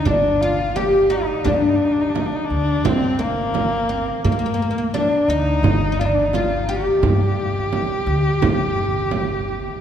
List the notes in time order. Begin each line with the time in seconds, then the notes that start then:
0.05 G1 D4, darbuka dum, frame drum
0.41 F4
0.76 G4, darbuka tek, frame drum
0.93 darbuka ka
1.10 D#4
1.44 G2 D4, darbuka dum, frame drum
1.54 D#4
1.62 D4
1.70 D#4
1.76 D4
1.84 D#4
1.92 D4
1.97 D#4, darbuka ka
2.10 D4
2.15 darbuka tek, frame drum
2.19 D#4
2.26 D4
2.32 D#4, darbuka ka
2.44 D4
2.50 D2, darbuka ka
2.84 G1 C4, darbuka dum, frame drum
3.19 A#3
3.54 darbuka tek, frame drum
3.72 darbuka ka
3.89 C4
4.24 G2 A#3, frame drum, darbuka dum
4.32 A#3
4.39 A#3
4.46 A#3
4.54 A#3
4.62 A#3
4.71 A#3
4.77 A#3, darbuka ka
4.94 D4, darbuka tek, frame drum
5.12 darbuka ka
5.28 D2 D#4, darbuka ka
5.63 G1, darbuka dum, frame drum
5.92 D#4
5.99 D4 F4
6.06 D#4
6.14 D4
6.25 D#4
6.33 F4, darbuka tek, frame drum
6.52 darbuka ka
6.69 G4
7.03 G2, frame drum, darbuka dum
7.56 darbuka ka
7.73 darbuka tek, frame drum
7.90 darbuka ka
8.07 D2
8.42 G1, darbuka dum, frame drum
8.77 darbuka ka
9.11 darbuka tek, frame drum